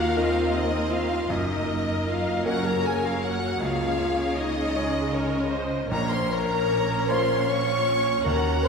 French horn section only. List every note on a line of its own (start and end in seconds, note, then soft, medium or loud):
0.00 0.55 F4 medium
0.55 0.92 D#4 medium
0.92 1.30 F4 medium
1.31 2.08 D#4 medium
2.09 2.47 F4 medium
2.46 2.65 F#4 medium
2.66 2.85 A#4 medium
2.85 3.04 G#4 medium
3.04 3.23 F4 medium
3.23 3.61 F#4 medium
3.62 4.36 F4 medium
4.38 5.13 D#4 medium
5.15 5.53 C#4 medium
5.92 6.10 A#4 medium
6.12 6.31 C5 medium
6.32 7.09 A#4 medium
7.08 7.46 C5 medium
7.47 8.25 C#5 medium
8.24 8.63 A#4 medium
8.64 8.68 C5 loud